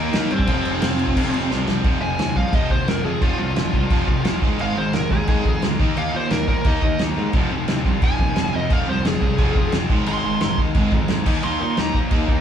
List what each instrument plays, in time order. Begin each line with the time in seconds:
Already playing: distorted electric guitar D#3 A#3 D#4, lead electric guitar A#3 A#4
0.13 distorted electric guitar D#3 A#3 D#4, picked electric bass D#3, snare, crash
0.31 picked electric bass G2, lead electric guitar C4 C5, crash
0.39 kick
0.47 picked electric bass F1, distorted electric guitar F2 C3 F3, kick, crash
0.65 picked electric bass F1, crash
0.82 picked electric bass F1, snare, crash
0.99 crash
1.08 kick
1.16 picked electric bass F1, distorted electric guitar F2 C3 F3, kick, crash
1.34 picked electric bass F1, crash
1.51 picked electric bass C2, snare
1.67 picked electric bass C2, distorted electric guitar F2 C3 F3, snare
1.84 picked electric bass F1, distorted electric guitar F2 C3 F3, kick, crash
2.02 picked electric bass F1, distorted electric guitar F2 C3 F3, lead electric guitar G#5
2.19 picked electric bass D#2, distorted electric guitar F2 C3 F3, snare, crash
2.36 picked electric bass C2, distorted electric guitar F2 C3 F3, lead electric guitar F5, kick
2.53 picked electric bass F1, distorted electric guitar F2 C3 F3, lead electric guitar D#5, kick, crash
2.70 picked electric bass D#2, distorted electric guitar F2 C3 F3, lead electric guitar C5, kick
2.87 picked electric bass F1, distorted electric guitar F2 C3 F3, lead electric guitar A#4, snare, crash
3.04 picked electric bass F2, distorted electric guitar F2 C3 F3, lead electric guitar G#4
3.22 picked electric bass F1, distorted electric guitar F2 C3 F3, lead electric guitar F4, kick, crash
3.39 picked electric bass C2, distorted electric guitar F2 C3 F3, lead electric guitar F4
3.56 picked electric bass F1, distorted electric guitar F2 C3 F3, snare, crash
3.73 picked electric bass C2, distorted electric guitar F2 C3 F3, kick
3.90 picked electric bass F1, distorted electric guitar F2 C3 F3, kick, crash
4.07 picked electric bass F1, distorted electric guitar F2 C3 F3, kick
4.25 picked electric bass F1, distorted electric guitar F2 C3 F3, snare, crash
4.41 picked electric bass G#1, distorted electric guitar G#2 D#3 G#3, kick
4.59 picked electric bass G#1, distorted electric guitar G#2 D#3 G#3, lead electric guitar F5, crash
4.77 picked electric bass G#1, distorted electric guitar G#2 D#3 G#3, lead electric guitar C5
4.93 picked electric bass F1, distorted electric guitar G#2 D#3 G#3, lead electric guitar A#4, snare, crash
5.10 picked electric bass D#2, distorted electric guitar G#2 D#3 G#3, lead electric guitar G#4, kick
5.27 picked electric bass G#1, distorted electric guitar G#2 D#3 G#3, lead electric guitar G#4, kick, crash
5.45 picked electric bass F2, distorted electric guitar G#2 D#3 G#3, kick
5.62 picked electric bass D2, distorted electric guitar G#2 D#3 G#3, snare, crash
5.80 picked electric bass D#2, distorted electric guitar D#3 A#3 D#4, kick
5.96 picked electric bass D#2, distorted electric guitar D#3 A#3 D#4, lead electric guitar F5, crash
6.14 picked electric bass A#2, distorted electric guitar D#3 A#3 D#4, lead electric guitar C5
6.31 picked electric bass D#2, distorted electric guitar D#3 A#3 D#4, lead electric guitar A#4, snare, crash
6.48 picked electric bass A#1, distorted electric guitar D#3 A#3 D#4, lead electric guitar A#4, kick
6.64 picked electric bass D#2, distorted electric guitar D#3 A#3 D#4, lead electric guitar D#5, kick, crash
6.82 picked electric bass D#2, distorted electric guitar D#3 A#3 D#4, kick
6.99 picked electric bass D#2, distorted electric guitar D#3 A#3 D#4, snare, crash
7.17 picked electric bass G#2, distorted electric guitar D#3 A#3 D#4
7.33 picked electric bass F1, distorted electric guitar F2 C3 F3, kick, crash
7.51 picked electric bass F1, distorted electric guitar F2 C3 F3
7.67 picked electric bass D#2, distorted electric guitar F2 C3 F3, snare, crash
7.85 picked electric bass C2, distorted electric guitar F2 C3 F3, kick
8.02 picked electric bass F1, distorted electric guitar F2 C3 F3, lead electric guitar G#5, kick, crash
8.18 picked electric bass D#2, distorted electric guitar F2 C3 F3, kick
8.36 picked electric bass F1, distorted electric guitar F2 C3 F3, snare, crash
8.53 distorted electric guitar F2 C3 F3, picked electric bass F2, lead electric guitar D#5
8.70 picked electric bass F1, distorted electric guitar F2 C3 F3, lead electric guitar F5, kick, crash
8.87 picked electric bass C2, distorted electric guitar F2 C3 F3, lead electric guitar C5
9.04 picked electric bass F1, distorted electric guitar F2 C3 F3, lead electric guitar G#4, snare, crash
9.21 picked electric bass C2, distorted electric guitar F2 C3 F3, kick
9.38 picked electric bass F1, distorted electric guitar F2 C3 F3, kick, crash
9.55 picked electric bass F1, distorted electric guitar F2 C3 F3, kick
9.72 picked electric bass F1, distorted electric guitar F2 C3 F3, snare, crash
9.89 picked electric bass G#1, distorted electric guitar G#2 D#3 G#3, kick
10.06 picked electric bass G#1, distorted electric guitar G#2 D#3 G#3, lead electric guitar C6, crash
10.23 picked electric bass G#1, distorted electric guitar G#2 D#3 G#3
10.40 picked electric bass F1, distorted electric guitar G#2 D#3 G#3, lead electric guitar C6, snare, crash
10.57 picked electric bass D#2, distorted electric guitar G#2 D#3 G#3, kick
10.75 picked electric bass G#1, distorted electric guitar G#2 D#3 G#3, kick, crash
10.92 picked electric bass F2, distorted electric guitar G#2 D#3 G#3, kick
11.08 picked electric bass F2, distorted electric guitar G#2 D#3 G#3, snare, crash
11.26 picked electric bass D#2, distorted electric guitar D#3 A#3 D#4, kick, crash
11.43 picked electric bass D#2, distorted electric guitar D#3 A#3 D#4, lead electric guitar C6, crash
11.60 picked electric bass A#2, distorted electric guitar D#3 A#3 D#4
11.77 picked electric bass D#2, distorted electric guitar D#3 A#3 D#4, lead electric guitar A#5, snare, crash
11.94 picked electric bass A#1, distorted electric guitar D#3 A#3 D#4, kick
12.11 picked electric bass D#2, distorted electric guitar D#3 A#3 D#4, kick, crash
12.28 picked electric bass D#2, distorted electric guitar D#3 A#3 D#4, kick